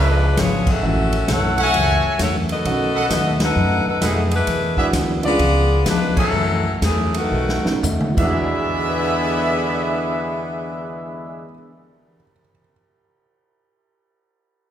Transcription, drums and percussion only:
0.37 kick, snare, hi-hat pedal, ride
0.67 kick, crash
1.13 ride
1.28 kick, snare, hi-hat pedal, ride
1.58 ride
1.74 kick, ride
2.19 kick, snare, hi-hat pedal, ride
2.49 ride
2.65 kick, ride
3.10 kick, snare, hi-hat pedal, ride
3.40 snare, ride
4.01 kick, snare, hi-hat pedal, ride
4.31 ride
4.47 kick, ride
4.77 kick
4.93 kick, snare, hi-hat pedal, ride
5.23 ride
5.39 kick, ride
5.86 kick, snare, hi-hat pedal, ride
6.17 kick, crash
6.82 kick, snare, hi-hat pedal, ride
7.14 ride
7.49 snare
7.66 snare
7.83 floor tom, hi-hat pedal
8.01 mid tom
8.17 kick, crash

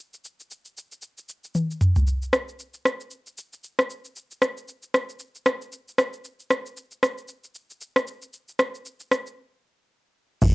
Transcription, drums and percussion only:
0.14 shaker
0.25 shaker
0.40 shaker
0.51 shaker
0.65 shaker
0.77 shaker
0.92 shaker
1.02 shaker
1.18 shaker
1.29 shaker
1.44 shaker
1.55 high tom, shaker
1.71 shaker
1.81 mid tom, shaker
1.96 floor tom, shaker
2.07 shaker
2.22 shaker
2.33 cross-stick, shaker
2.49 shaker
2.59 shaker
2.74 shaker
2.85 cross-stick, shaker
3.01 shaker
3.11 shaker
3.27 shaker
3.38 shaker
3.53 shaker
3.64 shaker
3.79 cross-stick, shaker
3.90 shaker
4.05 shaker
4.16 shaker
4.31 shaker
4.42 cross-stick, shaker
4.57 shaker
4.68 shaker
4.83 shaker
4.94 cross-stick, shaker
5.09 shaker
5.19 shaker
5.35 shaker
5.46 cross-stick, shaker
5.62 shaker
5.72 shaker
5.88 shaker
5.98 cross-stick, shaker
6.13 shaker
6.25 shaker
6.40 shaker
6.50 cross-stick, shaker
6.66 shaker
6.77 shaker
6.91 shaker
7.03 cross-stick, shaker
7.18 shaker
7.28 shaker
7.44 shaker
7.55 shaker
7.70 shaker
7.81 shaker
7.96 cross-stick, shaker
8.07 shaker
8.22 shaker
8.33 shaker
8.48 shaker
8.59 cross-stick, shaker
8.75 shaker
8.86 shaker
9.00 shaker
9.12 cross-stick, shaker
9.27 shaker
10.42 kick, crash, shaker

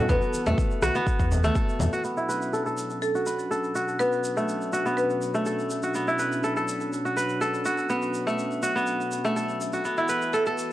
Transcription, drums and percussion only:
0.09 kick, muted conga, high conga, low conga, shaker
0.22 shaker
0.34 muted conga, shaker
0.46 low conga, shaker
0.58 kick, muted conga, shaker
0.71 shaker
0.82 cross-stick, high conga, shaker
0.95 muted conga, high conga, shaker
1.07 kick, shaker
1.19 kick, muted conga, shaker
1.32 low conga, shaker
1.44 muted conga, high conga, shaker
1.55 kick, shaker
1.69 shaker
1.79 muted conga, high conga, low conga, shaker
1.93 shaker
2.04 shaker
2.17 shaker
2.30 shaker
2.42 shaker
2.54 shaker
2.66 shaker
2.77 shaker
2.90 shaker
3.02 shaker
3.15 shaker
3.26 shaker
3.39 shaker
3.52 shaker
3.64 shaker
3.75 shaker
3.88 shaker
4.00 shaker
4.12 shaker
4.24 shaker
4.37 shaker
4.48 shaker
4.61 shaker
4.73 shaker
4.86 shaker
4.98 shaker
5.10 shaker
5.22 shaker
5.35 shaker
5.46 shaker
5.59 shaker
5.70 shaker
5.83 shaker
5.94 shaker
6.08 shaker
6.19 shaker
6.32 shaker
6.44 shaker
6.57 shaker
6.68 shaker
6.81 shaker
6.93 shaker
7.06 shaker
7.17 shaker
7.29 shaker
7.41 shaker
7.54 shaker
7.65 shaker
7.78 shaker
7.89 shaker
8.02 shaker
8.14 shaker
8.28 shaker
8.39 shaker
8.51 shaker
8.63 shaker
8.77 shaker
8.87 shaker
9.01 shaker
9.12 shaker
9.25 shaker
9.37 shaker
9.49 shaker
9.61 shaker
9.73 shaker
9.85 shaker
9.97 shaker
10.09 shaker
10.22 shaker
10.33 shaker
10.46 shaker
10.58 shaker

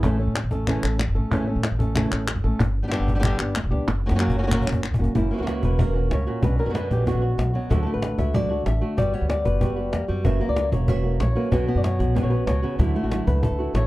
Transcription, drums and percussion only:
0.03 cajon bass
0.20 cajon slap
0.35 cajon slap, clap
0.51 cajon bass
0.67 cajon bass, clap
0.83 clap
1.00 cajon slap, clap
1.16 cajon slap
1.32 cajon bass
1.64 cajon slap, clap
1.80 cajon bass
1.96 cajon bass, clap
2.12 clap
2.28 cajon slap, clap
2.44 cajon slap
2.60 cajon bass
2.75 cajon slap
2.92 cajon slap, clap
3.08 cajon bass
3.24 cajon bass, clap
3.39 cajon slap, clap
3.55 cajon slap, clap
3.72 cajon slap
3.88 cajon slap
4.09 cajon slap
4.19 cajon slap, clap
4.30 cajon bass
4.51 cajon bass, clap
4.62 cajon bass
4.67 clap
4.72 cajon bass
4.84 clap
4.94 cajon bass
5.04 cajon bass
5.15 cajon bass
5.31 cajon slap
5.47 cajon slap
5.63 cajon bass
5.79 cajon bass
5.95 cajon slap
6.11 cajon slap
6.43 cajon bass
6.59 cajon slap
6.75 cajon slap
6.91 cajon bass
7.07 cajon bass
7.39 cajon slap
7.55 cajon slap
7.71 cajon bass
8.02 cajon slap
8.19 cajon bass
8.34 cajon bass
8.66 cajon slap
8.82 cajon slap
8.98 cajon bass
9.30 cajon slap
9.45 cajon bass
9.61 cajon bass
9.93 cajon slap
10.09 cajon slap
10.25 cajon bass
10.56 cajon slap
10.72 cajon bass
10.88 cajon bass
11.20 cajon slap
11.36 cajon slap
11.52 cajon bass
11.84 cajon slap
12.00 cajon bass
12.17 cajon bass
12.32 cajon slap
12.47 cajon slap
12.80 cajon bass
13.12 cajon slap
13.28 cajon bass
13.43 cajon bass
13.75 cajon slap

